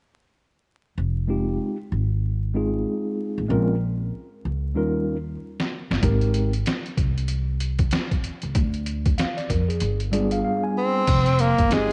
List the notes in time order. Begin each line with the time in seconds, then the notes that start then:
0.98 F1
1.27 G#3 C4 D#4 F4 G4
1.92 G#1
2.54 G#3 C4 D#4 F4 G#4
3.38 A1
3.48 A#1 G#3 C4 C#4 F4 A#4
4.45 C#2
4.75 D#2 G3 C#4 D#4 F4 A#4
5.60 snare
5.91 G1, snare
6.01 G#1 G#3 A#3 D#4 G4 A#4, kick, closed hi-hat
6.09 C4
6.21 closed hi-hat
6.34 closed hi-hat
6.53 closed hi-hat
6.66 snare, closed hi-hat
6.86 closed hi-hat
6.97 C2, kick, closed hi-hat
7.18 closed hi-hat
7.28 closed hi-hat
7.60 closed hi-hat
7.79 kick, closed hi-hat
7.91 snare, closed hi-hat
8.11 kick, closed hi-hat
8.24 closed hi-hat
8.42 C#2, closed hi-hat
8.55 D2, kick, closed hi-hat
8.74 closed hi-hat
8.86 closed hi-hat
9.06 kick, closed hi-hat
9.18 F5, snare, closed hi-hat
9.37 D5, snare, closed hi-hat
9.50 F2 A#4, kick, closed hi-hat
9.69 G#4, closed hi-hat
9.80 G1, closed hi-hat
10.00 closed hi-hat
10.12 G3 G#3 D4 F4 G#4 D5, closed hi-hat
10.19 B3
10.31 F5, closed hi-hat
10.44 F5
10.64 G#5
10.78 C4
11.07 F1, kick, closed hi-hat, crash
11.26 closed hi-hat
11.39 A#3, closed hi-hat
11.58 G1, kick, closed hi-hat
11.69 G#3 C4 D#4 F4 G4, snare, closed hi-hat